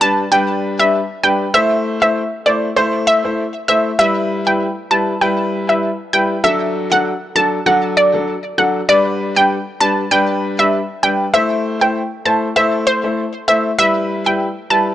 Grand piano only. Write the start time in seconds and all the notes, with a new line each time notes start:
0.01 G3 D4 B4
0.31 G3 D4 B4
0.79 G3 D4 B4
1.23 G3 D4 B4
1.54 A3 E4 C5
2.02 A3 E4 C5
2.46 A3 E4 C5
2.76 A3 E4 C5
3.24 A3 E4 C5
3.68 A3 E4 C5
3.99 G3 E4 B4
4.46 G3 E4 B4
4.91 G3 E4 B4
5.21 G3 E4 B4
5.69 G3 E4 B4
6.13 G3 E4 B4
6.44 F#3 D4 A4
6.91 F#3 D4 A4
7.35 F#3 D4 A4
7.66 F#3 D4 A4
8.14 F#3 D4 A4
8.58 F#3 D4 A4
8.88 G3 D4 B4
9.36 G3 D4 B4
9.80 G3 D4 B4
10.11 G3 D4 B4
10.59 G3 D4 B4
11.03 G3 D4 B4
11.33 A3 E4 C5
11.81 A3 E4 C5
12.25 A3 E4 C5
12.56 A3 E4 C5
13.04 A3 E4 C5
13.48 A3 E4 C5
13.78 G3 E4 B4
14.26 G3 E4 B4
14.70 G3 E4 B4